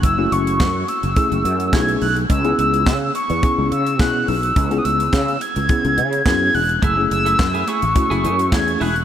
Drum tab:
HH |x-xx--xxxxxx-xox|xxxx--xxx-xx--ox|xxxx-xxxxxxx--ox|x-xx-xxxxxxx-xox|
CP |----x-------x---|----x-------x---|----x-------x---|----x-------x---|
SD |----o-------o---|----o-------o---|----o-------o---|----o-------o---|
BD |o---o---o---o---|o---o---o---o---|o---o---o---o---|o---o---o---o---|